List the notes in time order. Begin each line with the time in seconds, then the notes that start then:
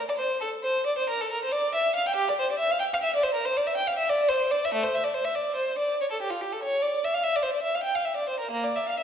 0.09 D5
0.18 C5
0.41 A4
0.64 C5
0.86 D5
0.98 C5
1.09 A#4
1.21 A4
1.32 A#4
1.45 C5
1.52 D5
1.75 E5
1.95 F5
2.08 G5
2.16 G4
2.30 D5
2.39 C5
2.52 D5
2.59 E5
2.71 F5
2.80 G5
2.94 F5
3.03 E5
3.16 D5
3.23 C5
3.34 A#4
3.45 C5
3.57 D5
3.67 E5
3.77 G5
3.87 F5
3.98 E5
4.09 D5
4.29 C5
4.51 D5
4.65 E5
4.74 A3
4.83 C5
4.95 E5
5.04 D5
5.14 C5
5.25 E5
5.35 D5
5.56 C5
5.78 D5
6.01 C#5
6.11 A4
6.22 G4
6.30 F4
6.41 G4
6.53 A4
6.63 C#5
6.83 D5
7.05 E5
7.14 F5
7.23 E5
7.36 D5
7.43 C5
7.53 D5
7.62 E5
7.75 F5
7.83 G5
7.95 F5
8.05 E5
8.17 D5
8.29 C5
8.39 A#4
8.51 A#3
8.64 D5
8.76 E5
8.88 F5
8.99 E5